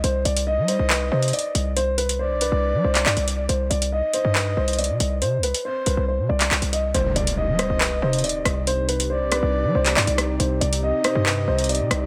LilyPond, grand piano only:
\new Staff \with { instrumentName = "Grand piano" } { \time 4/4 \key c \minor \tempo 4 = 139 c''8 d''8 ees''8 c''8 b'8 c''8 d''4 | c''8 b'8 c''8 b'4 c''8 d''4 | c''8 d''8 ees''8 c''8 b'8 c''8 d''4 | c''8 b'8 c''8 b'8 c''8 d''4 ees''8 |
c''8 d''8 ees''8 c''8 b'8 c''8 d''4 | c''8 b'8 c''8 b'4 c''8 d''4 | c''8 d''8 ees''8 c''8 b'8 c''8 d''4 | }